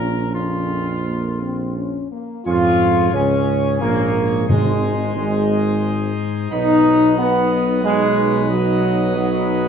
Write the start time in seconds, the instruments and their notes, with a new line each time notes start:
Already playing: tuba A#1, trombone section A#2, french horn section A#3 C#4, trumpet section A#4
0.34 trombone section F2, french horn section A#3 C#4, trumpet section F4
1.06 french horn section A#3
1.41 french horn section C4
1.76 french horn section C#4
2.12 french horn section A#3
2.46 tuba F2, pipe organ G#2 G#3 C#4 C#5, french horn section F4, trombone section F4, trumpet section F4
3.13 tuba C#2, french horn section C#4, trombone section C#4, trumpet section C#4
3.81 tuba A#1, trombone section A#3, french horn section A#3, trumpet section A#3
4.49 tuba G#1, timpani G#2, french horn section G#3, trombone section G#3, trumpet section G#3, pipe organ D#4 C5
5.16 tuba G#1, trumpet section G#3, french horn section G#3, trombone section G#3
6.51 tuba B1, pipe organ B2 F#3 B4, french horn section D#4, trombone section D#4, trumpet section B4 D#5
7.18 french horn section B3, trombone section B3
7.83 french horn section G#3, trombone section G#3
8.50 french horn section F#3, trombone section F#3
9.16 french horn section F#3, trombone section F#3